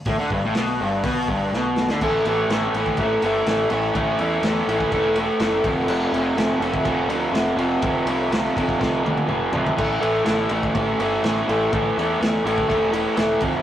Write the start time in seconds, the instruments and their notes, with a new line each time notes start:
0.05 picked electric bass A1, overdriven electric guitar A2, kick, open hi-hat
0.17 picked electric bass D2, overdriven electric guitar D3
0.30 picked electric bass G1, overdriven electric guitar G2, kick
0.43 picked electric bass A1, overdriven electric guitar A2
0.54 picked electric bass B1, overdriven electric guitar B2, snare, open hi-hat
0.81 picked electric bass G1, overdriven electric guitar G2
1.03 picked electric bass B1, overdriven electric guitar B2, kick, open hi-hat
1.28 picked electric bass G1, overdriven electric guitar G2, kick
1.52 picked electric bass B1, overdriven electric guitar B2, snare
1.76 snare
1.88 picked electric bass D2, overdriven electric guitar D3, snare
2.01 picked electric bass A1, overdriven electric guitar A2 E3 A3, kick, crash
2.25 picked electric bass A1, overdriven electric guitar A2 E3 A3, ride
2.48 picked electric bass A1, overdriven electric guitar A2 E3, snare, ride
2.52 overdriven electric guitar A3
2.74 picked electric bass A1, overdriven electric guitar A2 E3 A3, ride
2.86 kick
2.97 picked electric bass A1, overdriven electric guitar A2 E3 A3, kick, ride
3.22 picked electric bass G1, overdriven electric guitar A2 E3 A3, ride
3.46 picked electric bass A1, overdriven electric guitar A2 E3 A3, snare, ride
3.70 picked electric bass A1, overdriven electric guitar A2 E3 A3, ride
3.94 picked electric bass A1, overdriven electric guitar A2 E3 A3, kick, ride
4.19 picked electric bass E2, overdriven electric guitar A2 E3 A3, ride
4.42 picked electric bass E2, overdriven electric guitar A2 E3 A3, snare, ride
4.67 picked electric bass A1, overdriven electric guitar A2 E3 A3, ride
4.80 kick
4.92 picked electric bass E1, overdriven electric guitar A2 E3 A3, kick, ride
5.16 overdriven electric guitar A2 E3 A3, ride
5.40 picked electric bass F#1, overdriven electric guitar A2 E3 A3, snare, ride
5.64 picked electric bass F1, overdriven electric guitar F2 C3 F3, kick, ride
5.86 picked electric bass F1, overdriven electric guitar F2 C3 F3, crash
6.12 picked electric bass F1, overdriven electric guitar F2 C3 F3, ride
6.36 picked electric bass F1, overdriven electric guitar F2 C3 F3, snare, ride
6.60 picked electric bass F1, overdriven electric guitar F2 C3 F3, ride
6.74 kick
6.85 picked electric bass F1, overdriven electric guitar F2 C3 F3, kick, ride
7.08 picked electric bass D2, overdriven electric guitar F2 C3 F3, ride
7.32 picked electric bass F1, overdriven electric guitar F2 C3 F3, snare, ride
7.57 picked electric bass F1, overdriven electric guitar F2 C3 F3, ride
7.82 picked electric bass F1, overdriven electric guitar F2 C3 F3, kick, ride
8.06 picked electric bass C2, overdriven electric guitar F2 C3 F3, ride
8.29 picked electric bass C2, overdriven electric guitar F2 C3, ride
8.33 overdriven electric guitar F3, snare
8.56 picked electric bass F1, overdriven electric guitar F2 C3 F3, kick, ride
8.69 kick
8.79 picked electric bass C2, overdriven electric guitar F2 C3 F3, kick, snare
9.04 overdriven electric guitar F2 C3 F3, high tom
9.18 high tom
9.27 picked electric bass F1, overdriven electric guitar F2 C3 F3, mid tom
9.52 picked electric bass B1, overdriven electric guitar F2 C3 F3, floor tom
9.66 floor tom
9.76 picked electric bass A1, overdriven electric guitar A2 E3 A3, kick, crash
10.00 picked electric bass A1, overdriven electric guitar A2 E3 A3, ride
10.24 picked electric bass A1, overdriven electric guitar A2 E3 A3, snare, ride
10.49 picked electric bass A1, overdriven electric guitar A2 E3 A3, ride
10.63 kick
10.75 picked electric bass A1, overdriven electric guitar A2 E3 A3, kick, ride
10.99 picked electric bass G1, overdriven electric guitar A2 E3 A3, ride
11.23 picked electric bass A1, overdriven electric guitar A2 E3, snare, ride
11.27 overdriven electric guitar A3
11.47 picked electric bass A1, overdriven electric guitar A2 E3 A3, ride
11.72 picked electric bass A1, overdriven electric guitar A2 E3 A3, kick, ride
11.97 picked electric bass E2, overdriven electric guitar A2 E3 A3, ride
12.19 picked electric bass E2, overdriven electric guitar A2 E3 A3, snare, ride
12.44 picked electric bass A1, overdriven electric guitar A2 E3 A3, ride
12.58 kick
12.69 picked electric bass E1, overdriven electric guitar A2 E3 A3, kick, ride
12.92 overdriven electric guitar A2 E3 A3, ride
13.16 picked electric bass E1, overdriven electric guitar A2 E3 A3, snare, ride
13.40 picked electric bass F1, overdriven electric guitar F2 C3 F3, kick, ride